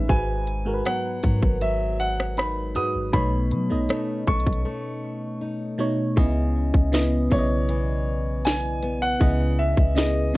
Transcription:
0.00 0.12 A2 medium
0.00 0.09 G#3 medium
0.00 0.85 G#3 medium
0.00 0.11 C#4 medium
0.00 0.17 C#4 medium
0.00 0.12 D#4 medium
0.00 0.11 B4 medium
0.00 0.12 E5 medium
0.08 0.82 G#1 loud
0.08 0.48 G#2 medium
0.08 3.13 G#2 medium
0.08 0.48 G#3 medium
0.08 0.48 F#4 medium
0.08 0.49 B4 medium
0.08 0.88 G#5 loud
0.08 kick loud
0.08 closed hi-hat medium
0.47 closed hi-hat medium
0.65 1.70 G#2 medium
0.65 1.70 G#3 medium
0.65 1.70 F#4 medium
0.65 0.74 A#4 medium
0.74 1.74 B4 medium
0.85 1.23 F#3 medium
0.85 3.89 B3 medium
0.85 1.58 F#5 medium
0.85 cross-stick loud
0.85 closed hi-hat medium
1.23 1.42 G#2 loud
1.23 1.61 F#3 medium
1.23 kick medium
1.23 closed hi-hat medium
1.43 2.77 G#1 loud
1.43 kick medium
1.61 3.89 F#3 medium
1.61 2.01 E5 medium
1.61 closed hi-hat medium
2.00 2.39 F#5 loud
2.00 closed hi-hat medium
2.20 cross-stick loud
2.37 3.90 D#4 medium
2.37 2.77 B5 loud
2.37 cross-stick loud
2.37 closed hi-hat medium
2.75 3.01 G#2 medium
2.75 2.96 G#2 medium
2.75 3.01 G#3 medium
2.75 3.02 F#4 medium
2.75 3.02 B4 medium
2.75 3.15 D#6 loud
2.75 closed hi-hat medium
2.95 3.13 G#1 loud
3.12 3.53 B1 loud
3.12 3.52 B2 medium
3.12 6.17 B2 medium
3.12 3.52 A3 medium
3.12 3.52 D#4 medium
3.12 3.53 C#5 medium
3.12 4.31 B5 loud
3.12 kick loud
3.12 closed hi-hat medium
3.51 3.72 F#3 loud
3.51 closed hi-hat medium
3.70 3.89 B1 medium
3.70 4.74 B2 medium
3.70 4.74 A3 medium
3.70 4.74 D#4 medium
3.70 4.75 D#5 medium
3.89 4.26 A3 medium
3.89 6.93 C#4 medium
3.89 5.41 D#4 medium
3.89 cross-stick loud
3.89 closed hi-hat medium
4.27 4.46 B1 loud
4.27 4.64 A3 medium
4.27 5.37 C#6 loud
4.27 kick medium
4.27 closed hi-hat soft
4.40 closed hi-hat soft
4.47 4.65 B1 loud
4.47 kick medium
4.53 closed hi-hat medium
4.65 6.24 A3 medium
5.41 7.72 D#4 medium
5.78 6.04 B2 medium
5.78 6.05 A3 medium
5.78 6.05 D#4 medium
5.78 6.06 C#5 loud
6.16 6.72 C#2 loud
6.16 6.68 C#3 medium
6.16 9.20 C#3 medium
6.16 6.69 B3 medium
6.16 6.69 E4 medium
6.16 6.70 D#5 medium
6.16 kick loud
6.16 closed hi-hat medium
6.74 7.29 C#2 loud
6.74 kick loud
6.92 7.18 C#3 medium
6.92 7.19 B3 medium
6.92 8.83 B3 medium
6.92 7.19 E4 medium
6.92 7.19 D#5 loud
6.92 snare loud
6.92 closed hi-hat medium
7.30 9.17 B1 loud
7.30 8.34 C#3 medium
7.30 8.34 B3 medium
7.30 8.35 E4 medium
7.30 8.49 C#5 medium
7.30 7.38 D5 medium
7.30 kick medium
7.39 8.38 D#5 medium
7.69 10.37 E3 medium
7.69 closed hi-hat medium
8.45 9.04 G#5 loud
8.45 snare loud
8.45 closed hi-hat medium
8.83 9.96 B3 medium
8.83 closed hi-hat medium
9.02 9.61 F#5 loud
9.20 9.76 C#2 loud
9.20 9.72 C#3 medium
9.20 10.37 C#3 medium
9.20 9.72 B3 medium
9.20 9.73 E4 medium
9.20 9.73 D#5 medium
9.20 kick loud
9.20 closed hi-hat medium
9.59 9.98 E5 medium
9.78 10.32 C#2 loud
9.78 kick loud
9.95 10.22 C#3 medium
9.95 10.22 B3 medium
9.95 10.37 B3 medium
9.95 10.23 E4 medium
9.95 10.23 G#4 medium
9.95 10.37 D#5 medium
9.95 snare loud
9.95 closed hi-hat medium
10.34 10.37 C#3 medium

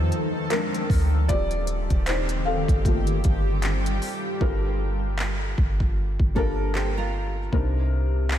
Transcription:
0.00 0.12 F2 loud
0.00 0.48 D#3 medium
0.00 0.49 F3 medium
0.00 0.47 G3 medium
0.00 0.48 A3 medium
0.00 0.51 C4 medium
0.00 0.53 D#4 medium
0.00 0.53 G4 loud
0.00 0.49 A4 medium
0.00 0.53 A4 medium
0.00 0.54 B4 medium
0.00 0.53 C5 loud
0.12 closed hi-hat medium
0.50 1.25 G#3 medium
0.50 1.26 C4 medium
0.50 1.26 D4 medium
0.50 1.25 A#4 loud
0.50 clap loud
0.50 closed hi-hat medium
0.75 closed hi-hat medium
0.90 1.28 D2 loud
0.90 kick loud
0.90 open hi-hat medium
1.29 1.89 D#1 loud
1.29 2.84 D#3 medium
1.29 2.42 G3 medium
1.29 2.83 C4 medium
1.29 2.42 C4 medium
1.29 2.43 F4 medium
1.29 2.83 G4 medium
1.29 2.04 G4 medium
1.29 2.09 D5 loud
1.29 kick loud
1.29 closed hi-hat medium
1.51 closed hi-hat soft
1.67 closed hi-hat medium
1.90 2.66 D#1 loud
1.90 kick medium
1.90 closed hi-hat medium
2.06 2.44 D#4 medium
2.06 2.43 C5 loud
2.06 clap loud
2.06 closed hi-hat medium
2.29 closed hi-hat medium
2.45 3.59 A4 medium
2.45 3.59 F5 loud
2.68 3.22 G1 loud
2.68 kick loud
2.68 closed hi-hat medium
2.84 4.39 G3 medium
2.84 3.98 A3 medium
2.84 3.98 A#3 medium
2.84 4.39 F4 medium
2.84 3.99 F4 medium
2.84 4.39 G4 medium
2.84 4.39 A4 medium
2.84 kick loud
2.84 closed hi-hat medium
3.07 closed hi-hat soft
3.24 3.99 G1 loud
3.24 kick medium
3.24 closed hi-hat medium
3.62 clap loud
3.62 closed hi-hat medium
3.86 closed hi-hat medium
4.02 open hi-hat medium
4.40 5.54 G1 loud
4.40 5.77 G3 medium
4.40 5.77 D4 medium
4.40 5.77 F4 medium
4.40 5.77 A4 medium
4.40 5.77 A#4 loud
4.40 kick loud
5.19 clap loud
5.58 6.17 G1 loud
5.58 kick medium
5.80 kick medium
6.20 7.49 G1 loud
6.20 kick medium
6.35 7.38 G3 medium
6.35 7.38 D4 medium
6.35 6.73 D4 medium
6.35 7.38 F4 medium
6.35 6.73 A4 medium
6.35 7.39 A4 medium
6.35 7.39 A#4 medium
6.35 kick medium
6.75 6.97 G4 medium
6.75 6.96 C5 medium
6.75 clap loud
6.97 7.50 F4 medium
6.97 7.50 A#4 medium
7.52 8.38 C2 loud
7.52 8.38 C3 medium
7.52 8.38 C4 medium
7.52 8.38 D4 medium
7.52 8.38 D#4 medium
7.52 8.38 A#4 medium
7.52 kick loud
8.31 clap loud

